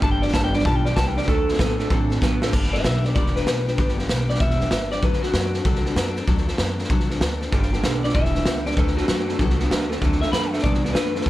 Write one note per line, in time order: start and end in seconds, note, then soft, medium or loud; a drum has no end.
0.02 0.31 G1 loud
0.02 0.32 G2 medium
0.02 0.23 G2 medium
0.02 0.32 D3 loud
0.02 0.23 D3 medium
0.02 0.23 G3 medium
0.02 0.23 B3 medium
0.02 0.23 D4 medium
0.02 0.22 G4 loud
0.02 0.11 A5 loud
0.02 kick loud
0.02 snare soft
0.11 0.22 G5 medium
0.22 0.34 G3 soft
0.22 0.35 B3 medium
0.22 0.35 D4 medium
0.22 0.34 G4 medium
0.22 0.33 D5 medium
0.22 snare soft
0.28 snare soft
0.34 0.62 G1 medium
0.34 0.52 G2 medium
0.34 0.52 E3 loud
0.34 0.54 G3 medium
0.34 0.55 B3 medium
0.34 0.55 D4 medium
0.34 0.54 G4 medium
0.34 0.44 A5 medium
0.34 kick medium
0.34 snare loud
0.34 hi-hat pedal medium
0.44 0.54 G5 medium
0.53 0.64 G2 medium
0.53 0.64 D3 medium
0.53 0.66 B3 medium
0.53 0.67 D4 medium
0.53 0.66 G4 medium
0.53 0.65 D5 medium
0.53 snare soft
0.58 0.66 G3 soft
0.58 snare soft
0.65 0.94 B1 loud
0.65 0.95 G2 medium
0.65 0.86 G2 medium
0.65 0.86 D3 medium
0.65 0.95 F3 loud
0.65 0.86 G3 medium
0.65 0.86 B3 medium
0.65 0.86 D4 medium
0.65 0.86 G4 medium
0.65 0.76 A5 loud
0.65 kick loud
0.65 snare soft
0.76 0.86 G5 medium
0.85 0.96 G3 soft
0.85 0.97 B3 medium
0.85 0.97 D4 medium
0.85 0.97 G4 medium
0.85 0.96 D5 medium
0.85 snare soft
0.96 1.25 C2 medium
0.96 1.14 G2 medium
0.96 1.15 E3 loud
0.96 1.17 G3 medium
0.96 1.17 B3 medium
0.96 1.17 D4 medium
0.96 1.17 G4 medium
0.96 1.07 A5 medium
0.96 kick medium
0.96 snare loud
0.96 hi-hat pedal medium
1.07 1.17 G5 medium
1.17 1.27 G2 medium
1.17 1.26 D3 medium
1.17 1.29 G3 soft
1.17 1.29 B3 medium
1.17 1.29 D4 medium
1.17 1.28 G4 medium
1.17 1.27 D5 medium
1.17 snare soft
1.23 snare soft
1.27 1.56 D2 loud
1.27 1.56 D3 loud
1.27 1.48 D3 medium
1.27 1.48 F#3 medium
1.27 1.57 A3 loud
1.27 1.49 C4 medium
1.27 1.49 D4 medium
1.27 1.88 A4 loud
1.27 1.48 A4 medium
1.27 kick loud
1.27 snare soft
1.48 1.59 C4 soft
1.48 1.60 D4 medium
1.48 1.60 A4 medium
1.48 snare soft
1.53 snare soft
1.59 1.88 A2 medium
1.59 1.77 D3 medium
1.59 1.79 F#3 medium
1.59 1.77 B3 loud
1.59 1.80 C4 medium
1.59 1.79 D4 medium
1.59 1.78 A4 medium
1.59 kick medium
1.59 snare loud
1.59 hi-hat pedal medium
1.79 1.89 D3 medium
1.79 1.89 A3 medium
1.79 1.90 C4 soft
1.79 1.90 D4 medium
1.79 1.90 A4 medium
1.79 snare soft
1.90 2.19 A2 loud
1.90 2.10 D3 loud
1.90 2.19 D3 medium
1.90 2.10 F#3 loud
1.90 2.19 C4 loud
1.90 2.11 C4 loud
1.90 2.10 D4 loud
1.90 2.09 A4 loud
1.90 kick loud
1.90 snare soft
2.10 2.21 C4 soft
2.10 2.21 D4 medium
2.10 2.21 A4 medium
2.10 snare soft
2.21 2.50 A2 medium
2.21 2.40 D3 medium
2.21 2.41 F#3 medium
2.21 2.40 B3 medium
2.21 2.42 C4 medium
2.21 2.42 D4 medium
2.21 2.40 A4 medium
2.21 kick medium
2.21 snare medium
2.21 hi-hat pedal medium
2.41 2.51 D3 medium
2.41 2.52 A3 medium
2.41 2.54 C4 soft
2.41 2.52 D4 medium
2.41 2.53 A4 medium
2.41 snare medium
2.53 2.78 G1 medium
2.53 2.73 G2 medium
2.53 2.73 D3 medium
2.53 2.73 G3 medium
2.53 2.72 B3 medium
2.53 2.72 D4 medium
2.53 2.71 G4 loud
2.53 kick loud
2.53 snare soft
2.53 crash loud
2.64 snare soft
2.72 2.82 G3 soft
2.72 2.83 B3 soft
2.72 2.84 D4 medium
2.72 2.84 G4 medium
2.72 2.83 B4 medium
2.72 2.83 E5 medium
2.72 snare soft
2.84 3.09 B1 loud
2.84 3.04 G3 medium
2.84 3.04 B3 medium
2.84 3.03 D4 medium
2.84 3.03 G4 medium
2.84 3.04 B4 medium
2.84 3.05 E5 medium
2.84 snare loud
2.84 hi-hat pedal medium
3.04 3.14 G3 soft
3.04 3.15 B3 soft
3.04 3.15 D4 medium
3.04 3.15 G4 medium
3.04 3.13 A#4 medium
3.04 3.14 D5 medium
3.04 snare soft
3.14 3.40 E1 medium
3.14 3.35 G2 medium
3.14 3.36 D3 medium
3.14 3.35 G3 loud
3.14 3.36 B3 medium
3.14 3.35 D4 medium
3.14 3.34 G4 medium
3.14 3.34 A#4 medium
3.14 3.35 D5 medium
3.14 kick loud
3.14 snare soft
3.26 snare soft
3.35 3.45 G3 soft
3.35 3.45 B3 medium
3.35 3.46 D4 medium
3.35 3.47 G4 medium
3.35 3.96 B4 loud
3.35 snare soft
3.46 3.71 B1 loud
3.46 3.66 G3 medium
3.46 3.66 B3 medium
3.46 3.66 D4 medium
3.46 3.65 G4 medium
3.46 snare loud
3.46 hi-hat pedal medium
3.66 3.77 G3 soft
3.66 3.78 B3 medium
3.66 3.78 D4 medium
3.66 3.78 G4 medium
3.66 snare soft
3.78 4.03 G1 loud
3.78 3.98 G2 medium
3.78 3.98 D3 medium
3.78 3.98 G3 medium
3.78 3.98 B3 medium
3.78 3.98 D4 medium
3.78 3.97 G4 medium
3.78 kick loud
3.78 snare soft
3.89 snare soft
3.98 4.07 G3 medium
3.98 4.08 B3 medium
3.98 4.09 D4 medium
3.98 4.09 G4 medium
3.98 snare soft
4.08 4.34 B1 medium
4.08 4.29 G3 medium
4.08 4.29 B3 medium
4.08 4.29 D4 medium
4.08 4.28 G4 medium
4.08 snare loud
4.08 hi-hat pedal medium
4.29 4.39 G3 soft
4.29 4.40 B3 soft
4.29 4.40 D4 medium
4.29 4.40 G4 medium
4.29 4.40 D5 medium
4.29 snare soft
4.35 snare soft
4.40 4.65 E1 medium
4.40 4.60 G2 medium
4.40 4.61 D3 medium
4.40 4.61 G3 medium
4.40 4.60 B3 medium
4.40 4.59 D4 medium
4.40 4.59 G4 medium
4.40 4.90 E5 loud
4.40 kick loud
4.40 snare soft
4.50 snare soft
4.60 4.70 G3 soft
4.60 4.70 B3 soft
4.60 4.71 D4 soft
4.60 4.71 G4 medium
4.60 snare soft
4.71 4.97 G1 medium
4.71 4.91 G3 medium
4.71 4.91 B3 medium
4.71 4.90 D4 medium
4.71 4.90 G4 medium
4.71 snare loud
4.71 hi-hat pedal medium
4.91 5.02 G3 soft
4.91 5.03 B3 soft
4.91 5.02 D4 soft
4.91 5.03 G4 medium
4.91 5.03 D5 medium
4.91 snare soft
5.02 5.28 D2 loud
5.02 5.23 D3 medium
5.02 5.23 F#3 medium
5.02 5.23 C4 medium
5.02 5.23 D4 medium
5.02 5.21 A4 medium
5.02 5.23 B4 medium
5.02 kick loud
5.02 snare soft
5.13 snare soft
5.23 5.34 C4 soft
5.23 5.35 D4 medium
5.23 6.14 F#4 loud
5.23 5.34 A4 medium
5.23 snare soft
5.33 5.59 F#2 loud
5.33 5.54 F#3 medium
5.33 5.55 C4 medium
5.33 5.55 D4 medium
5.33 5.53 A4 medium
5.33 snare loud
5.33 hi-hat pedal medium
5.54 5.64 C4 soft
5.54 5.64 D4 medium
5.54 5.65 A4 medium
5.54 snare soft
5.65 5.90 C2 medium
5.65 5.85 D3 loud
5.65 5.85 F#3 loud
5.65 5.85 C4 loud
5.65 5.85 D4 loud
5.65 5.85 A4 loud
5.65 kick loud
5.65 snare soft
5.75 snare soft
5.86 5.97 C4 soft
5.86 5.97 D4 medium
5.86 5.97 A4 medium
5.86 snare soft
5.96 6.21 F#2 loud
5.96 6.17 F#3 medium
5.96 6.17 C4 medium
5.96 6.16 D4 medium
5.96 6.15 A4 medium
5.96 snare loud
5.96 hi-hat pedal medium
6.16 6.27 C4 medium
6.16 6.27 D4 medium
6.16 6.28 A4 medium
6.16 snare soft
6.27 6.53 D2 loud
6.27 6.48 D3 medium
6.27 6.48 F#3 loud
6.27 6.48 C4 loud
6.27 6.47 D4 loud
6.27 6.47 A4 medium
6.27 kick loud
6.27 snare soft
6.38 snare soft
6.48 6.58 C4 soft
6.48 6.58 D4 medium
6.48 6.59 A4 medium
6.48 snare soft
6.58 6.84 F#2 medium
6.58 6.79 F#3 medium
6.58 6.79 C4 medium
6.58 6.79 D4 medium
6.58 6.78 A4 medium
6.58 snare loud
6.58 hi-hat pedal medium
6.79 6.89 C4 medium
6.79 6.89 D4 medium
6.79 6.90 A4 medium
6.79 snare soft
6.84 snare soft
6.90 7.15 C2 medium
6.90 7.10 D3 medium
6.90 7.10 F#3 loud
6.90 7.10 C4 loud
6.90 7.09 D4 loud
6.90 7.08 A4 loud
6.90 kick loud
6.90 snare soft
7.00 snare soft
7.09 7.20 C4 medium
7.09 7.21 D4 medium
7.09 7.21 A4 medium
7.09 snare soft
7.20 7.45 D2 medium
7.20 7.41 F#3 medium
7.20 7.41 C4 medium
7.20 7.41 D4 medium
7.20 7.39 A4 medium
7.20 snare loud
7.20 hi-hat pedal medium
7.41 7.53 C4 soft
7.41 7.52 D4 medium
7.41 7.52 A4 medium
7.41 snare soft
7.52 7.77 G1 loud
7.52 7.70 G2 medium
7.52 7.72 G2 medium
7.52 7.71 D3 medium
7.52 7.73 D3 loud
7.52 7.73 G3 medium
7.52 7.73 B3 medium
7.52 7.72 D4 medium
7.52 7.71 G4 loud
7.52 kick loud
7.52 snare soft
7.63 snare soft
7.73 7.83 G2 medium
7.73 7.83 D3 medium
7.73 7.82 G3 medium
7.73 7.83 B3 medium
7.73 7.83 D4 medium
7.73 7.84 G4 medium
7.73 snare soft
7.83 8.08 B1 loud
7.83 8.02 G2 medium
7.83 8.02 D3 medium
7.83 8.03 G3 medium
7.83 8.03 B3 medium
7.83 8.02 D4 medium
7.83 8.01 G4 medium
7.83 snare loud
7.83 hi-hat pedal medium
8.03 8.14 G2 medium
8.03 8.14 D3 medium
8.03 8.14 G3 soft
8.03 8.14 B3 soft
8.03 8.14 D4 medium
8.03 8.14 G4 medium
8.03 8.14 D5 medium
8.03 snare soft
8.09 snare soft
8.14 8.40 E1 medium
8.14 8.35 G2 medium
8.14 8.33 G2 medium
8.14 8.35 D3 medium
8.14 8.33 E3 medium
8.14 8.35 G3 medium
8.14 8.35 B3 medium
8.14 8.35 D4 medium
8.14 8.33 G4 medium
8.14 8.64 E5 medium
8.14 kick loud
8.14 snare soft
8.25 snare soft
8.35 8.45 G2 medium
8.35 8.46 E3 medium
8.35 8.44 G3 soft
8.35 8.45 B3 soft
8.35 8.45 D4 medium
8.35 8.46 G4 medium
8.35 snare soft
8.45 8.71 C#2 medium
8.45 8.64 G2 medium
8.45 8.65 D3 medium
8.45 8.66 G3 medium
8.45 8.66 B3 medium
8.45 8.66 D4 medium
8.45 8.65 G4 medium
8.45 snare loud
8.45 hi-hat pedal medium
8.66 8.76 G2 medium
8.66 8.76 D3 medium
8.66 8.78 G3 soft
8.66 8.78 B3 medium
8.66 8.77 D4 medium
8.66 8.77 G4 medium
8.66 8.77 D5 medium
8.66 snare soft
8.71 snare soft
8.77 9.02 D2 loud
8.77 8.95 D3 medium
8.77 8.97 D3 medium
8.77 8.98 F#3 medium
8.77 8.95 A3 loud
8.77 8.98 C4 medium
8.77 8.98 D4 medium
8.77 8.97 A4 medium
8.77 8.96 B4 medium
8.77 kick loud
8.77 snare soft
8.87 snare soft
8.97 9.07 D3 medium
8.97 9.07 A3 medium
8.97 9.09 C4 soft
8.97 9.09 D4 medium
8.97 9.88 F#4 medium
8.97 9.09 A4 medium
8.97 snare soft
9.08 9.33 F#2 medium
9.08 9.26 D3 medium
9.08 9.28 F#3 medium
9.08 9.26 A3 medium
9.08 9.29 C4 medium
9.08 9.29 D4 medium
9.08 9.29 A4 medium
9.08 snare loud
9.08 hi-hat pedal medium
9.27 9.37 D3 medium
9.27 9.38 A3 medium
9.27 9.40 A4 medium
9.27 snare soft
9.31 9.40 C4 soft
9.31 9.40 D4 medium
9.39 9.64 C2 loud
9.39 9.57 D3 medium
9.39 9.60 D3 medium
9.39 9.60 F#3 medium
9.39 9.58 B3 loud
9.39 9.60 C4 loud
9.39 9.60 D4 loud
9.39 9.59 A4 loud
9.39 kick loud
9.39 snare soft
9.50 snare soft
9.59 9.69 D3 medium
9.59 9.70 B3 medium
9.59 9.72 C4 medium
9.59 9.72 D4 medium
9.59 9.71 A4 medium
9.59 snare soft
9.70 9.95 D2 loud
9.70 9.88 D3 medium
9.70 9.91 F#3 medium
9.70 9.89 A3 loud
9.70 9.92 C4 medium
9.70 9.91 D4 medium
9.70 snare loud
9.70 hi-hat pedal medium
9.74 9.90 A4 medium
9.89 10.00 D3 medium
9.89 10.00 A3 medium
9.89 10.03 D4 medium
9.89 10.02 A4 medium
9.89 snare soft
9.94 10.03 C4 medium
10.01 10.27 D2 loud
10.01 10.19 D3 medium
10.01 10.22 D3 medium
10.01 10.23 F#3 loud
10.01 10.20 A3 medium
10.01 10.23 C4 loud
10.01 10.23 D4 medium
10.01 10.22 A4 loud
10.01 kick loud
10.01 snare soft
10.12 snare soft
10.22 10.32 D3 medium
10.22 10.32 A3 medium
10.22 10.33 C4 soft
10.22 10.34 D4 medium
10.22 10.34 A4 medium
10.22 10.32 E5 medium
10.22 snare soft
10.32 10.57 F#2 medium
10.32 10.51 D3 medium
10.32 10.53 F#3 medium
10.32 10.51 A3 loud
10.32 10.53 C4 medium
10.32 10.53 D4 medium
10.32 10.52 A4 medium
10.32 10.51 B5 loud
10.32 snare loud
10.32 hi-hat pedal medium
10.51 10.63 D3 medium
10.51 10.63 A3 medium
10.51 10.65 C4 soft
10.51 10.65 D4 medium
10.51 10.64 A4 medium
10.51 10.63 E5 medium
10.51 snare soft
10.59 10.93 D5 medium
10.59 snare soft
10.64 10.89 C2 loud
10.64 10.82 D3 medium
10.64 10.84 D3 medium
10.64 10.85 F#3 medium
10.64 10.82 B3 medium
10.64 10.85 C4 medium
10.64 10.84 D4 medium
10.64 10.83 A4 loud
10.64 kick loud
10.64 snare soft
10.74 snare soft
10.84 10.93 D3 medium
10.84 10.94 B3 medium
10.84 10.96 C4 soft
10.84 10.96 D4 medium
10.84 10.95 A4 medium
10.84 snare soft
10.93 11.19 F#2 medium
10.93 11.12 D3 medium
10.93 11.16 F#3 medium
10.93 11.13 A3 medium
10.93 11.30 B4 medium
10.93 snare loud
10.93 hi-hat pedal medium
10.97 11.16 C4 medium
10.97 11.15 D4 medium
10.97 11.14 A4 medium
11.15 11.25 D3 medium
11.15 11.25 A3 medium
11.15 11.27 C4 soft
11.15 11.27 D4 medium
11.15 11.26 A4 medium
11.15 snare soft
11.21 snare soft
11.26 11.30 G1 loud
11.26 11.30 G2 medium
11.26 11.30 D3 medium
11.26 kick loud
11.26 snare soft